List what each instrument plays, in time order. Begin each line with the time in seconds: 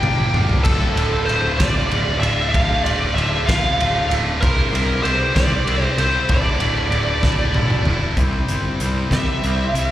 Already playing: lead electric guitar G5
0.02 picked electric bass G1, distorted electric guitar G3 A#3 D4 G4, high tom
0.18 mid tom
0.34 picked electric bass G1, distorted electric guitar G3 A#3 D4 G4, mid tom
0.49 floor tom
0.64 picked electric bass D1, distorted electric guitar D2 A2 D3 A3 F4, lead electric guitar A4, kick, crash, splash
0.96 picked electric bass D1, distorted electric guitar D3 A3 F4, ride
1.26 picked electric bass D1, distorted electric guitar A2 A3, lead electric guitar C5, ride
1.30 distorted electric guitar D3 F4
1.57 picked electric bass D1, distorted electric guitar F4, lead electric guitar D5, kick, snare, ride
1.61 distorted electric guitar D3 A3
1.90 picked electric bass D1, distorted electric guitar A2 D3 A3 F4, ride
2.20 picked electric bass D1, distorted electric guitar F4, lead electric guitar E5, ride
2.24 distorted electric guitar D3 A3
2.49 lead electric guitar F5
2.53 picked electric bass D1, distorted electric guitar D2 A2 D3 A3 F4, kick, ride
2.84 picked electric bass D1, distorted electric guitar D3 A3 F4, lead electric guitar D5, ride
3.15 picked electric bass D1, distorted electric guitar A2 D3 A3 F4, lead electric guitar E5, ride
3.47 picked electric bass D1, distorted electric guitar D3 A3 F4, lead electric guitar F5, kick, snare, ride
3.79 picked electric bass D1, distorted electric guitar A2 D3 A3 F4, ride
4.09 picked electric bass D1, distorted electric guitar D3 A3 F4, ride
4.40 picked electric bass C2, distorted electric guitar C3 G3 C4 E4 G4 C5, lead electric guitar A#4, kick, ride
4.71 picked electric bass C2, distorted electric guitar C4 E4 G4 C5
4.75 ride
5.03 picked electric bass C2, distorted electric guitar C4 E4 G4 C5, lead electric guitar C5, ride
5.35 picked electric bass C2, distorted electric guitar C4 E4 G4 C5, lead electric guitar D5, kick, snare, ride
5.66 picked electric bass C2, distorted electric guitar C4 E4 G4 C5, ride
5.84 lead electric guitar C5
5.98 picked electric bass C2, distorted electric guitar C4 E4 G4 C5, lead electric guitar C5, ride
6.29 picked electric bass D1, distorted electric guitar D2 A2 D3 A3 E4, lead electric guitar D5, kick, ride
6.60 picked electric bass D1, distorted electric guitar D3 A3 E4, ride
6.91 picked electric bass D1, distorted electric guitar A2 D3 A3 E4, ride
7.23 picked electric bass D1, distorted electric guitar A3 E4, kick, snare
7.27 distorted electric guitar D3
7.54 picked electric bass D1, distorted electric guitar A2 D3 A3 E4, high tom
7.70 mid tom
7.85 picked electric bass D1, distorted electric guitar D3 A3 E4, mid tom
8.17 picked electric bass C2, distorted electric guitar C3 G3 C4, clean electric guitar C3 G3 C4 E4 G4 C5, kick, closed hi-hat
8.48 picked electric bass G1, clean electric guitar C4 E4 G4 C5, closed hi-hat
8.80 picked electric bass C2, clean electric guitar C4 E4 G4 C5, closed hi-hat
9.10 picked electric bass C2, clean electric guitar C3 G3 C4 E4 G4 C5, lead electric guitar E5, kick, snare, closed hi-hat
9.42 picked electric bass C2, distorted electric guitar C3 G3 C4, clean electric guitar C4 E4 G4 C5, closed hi-hat
9.74 picked electric bass C2, closed hi-hat